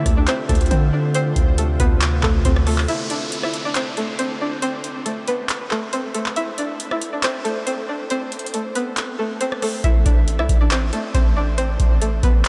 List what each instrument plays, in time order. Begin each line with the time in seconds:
Already playing: ambient pad C3 D3 F4, synth pluck E4 E5
0.06 808-style bass D2, kick, cross-stick, closed hi-hat
0.17 synth pluck D4 D5
0.27 synth pluck C4 C5, clap, closed hi-hat
0.49 808-style bass D2, synth pluck A3 A4, kick, closed hi-hat
0.55 closed hi-hat
0.61 closed hi-hat
0.66 closed hi-hat
0.71 808-style bass D3, synth pluck C4 C5, kick, closed hi-hat
0.93 synth pluck D4 D5
1.14 synth pluck C4 C5, closed hi-hat
1.36 808-style bass D2, kick, closed hi-hat
1.58 synth pluck A3 A4, closed hi-hat
1.80 808-style bass D2, synth pluck B3 B4, kick, closed hi-hat
2.01 clap, closed hi-hat
2.23 808-style bass D2, synth pluck A3 A4, kick, clap
2.45 808-style bass D2, synth pluck C4 C5, kick, closed hi-hat
2.56 cross-stick
2.67 synth pluck A3 A4, cross-stick, open hi-hat
2.78 clap
2.88 synth pluck E4 E5, closed hi-hat, downlifter
3.10 synth pluck D4 D5, closed hi-hat
3.32 closed hi-hat
3.43 synth pluck E4 E5, cross-stick
3.54 closed hi-hat
3.65 synth pluck D4 D5
3.75 synth pluck C4 C5, clap, closed hi-hat
3.97 synth pluck A3 A4, closed hi-hat
4.19 synth pluck C4 C5, closed hi-hat
4.41 synth pluck D4 D5
4.62 synth pluck C4 C5, closed hi-hat
4.84 closed hi-hat
5.06 synth pluck A3 A4, closed hi-hat
5.28 synth pluck B3 B4, closed hi-hat
5.49 clap, closed hi-hat
5.71 synth pluck A3 A4, clap
5.93 synth pluck C4 C5, closed hi-hat
6.14 synth pluck A3 A4, closed hi-hat
6.26 clap
6.36 synth pluck E4 E5, closed hi-hat
6.58 synth pluck D4 D5, closed hi-hat
6.80 closed hi-hat
6.91 synth pluck E4 E5, cross-stick
7.02 closed hi-hat
7.13 synth pluck D4 D5
7.23 synth pluck C4 C5, clap, closed hi-hat
7.44 synth pluck A3 A4, closed hi-hat
7.66 synth pluck C4 C5, closed hi-hat
7.89 synth pluck D4 D5
8.10 synth pluck C4 C5, closed hi-hat
8.32 closed hi-hat
8.39 closed hi-hat
8.46 closed hi-hat
8.54 synth pluck A3 A4, closed hi-hat
8.75 synth pluck B3 B4, closed hi-hat
8.97 clap, closed hi-hat
9.19 synth pluck A3 A4
9.41 synth pluck C4 C5, closed hi-hat
9.52 cross-stick
9.62 synth pluck A3 A4, cross-stick, open hi-hat
9.84 808-style bass A1, synth pluck E4 E5, kick, closed hi-hat
10.06 808-style bass A1, synth pluck D4 D5, kick, closed hi-hat
10.28 closed hi-hat
10.39 808-style bass C2, synth pluck E4 E5, cross-stick
10.49 808-style bass A1, kick, closed hi-hat
10.61 synth pluck D4 D5
10.71 synth pluck C4 C5, clap, closed hi-hat
10.93 synth pluck A3 A4, closed hi-hat
11.14 808-style bass A1, synth pluck C4 C5, kick, closed hi-hat
11.37 synth pluck D4 D5
11.58 synth pluck C4 C5, closed hi-hat
11.80 808-style bass A1, kick, closed hi-hat
12.01 synth pluck A3 A4, closed hi-hat
12.23 808-style bass A1, synth pluck B3 B4, kick, closed hi-hat
12.45 clap, closed hi-hat